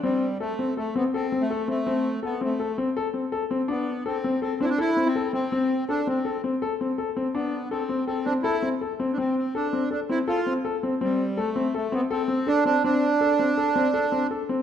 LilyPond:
<<
  \new Staff \with { instrumentName = "Accordion" } { \time 5/4 \key c \major \tempo 4 = 164 g4 a4 a8 b8 c'8. a8. a8~ | a4 b8 a4 r2 r8 | b4 c'4 c'8 d'32 e'32 d'16 e'8. c'8. c'8~ | c'4 d'8 c'4 r2 r8 |
b4 c'4 c'8 d'8 e'8. r4 r32 d'32 | c'8 c'8 d'4 d'8 e'8 f'8. r4 r16 | g4 a4 a8 b8 c'4 d'8 d'8 | d'1 r4 | }
  \new Staff \with { instrumentName = "Grand piano" } { \time 5/4 \key c \major c'4 a'8 c'8 a'8 c'8 a'8 c'8 a'8 c'8 | c'4 a'8 c'8 a'8 c'8 a'8 c'8 a'8 c'8 | d'4 a'8 c'8 a'8 c'8 a'8 c'8 a'8 c'8 | c'4 a'8 c'8 a'8 c'8 a'8 c'8 a'8 c'8 |
d'4 a'8 c'8 a'8 c'8 a'8 c'8 a'8 c'8 | c'4 a'8 c'8 a'8 c'8 a'8 c'8 a'8 c'8 | c'4 a'8 c'8 a'8 c'8 a'8 c'8 a'8 c'8 | c'4 a'8 c'8 a'8 c'8 a'8 c'8 a'8 c'8 | }
>>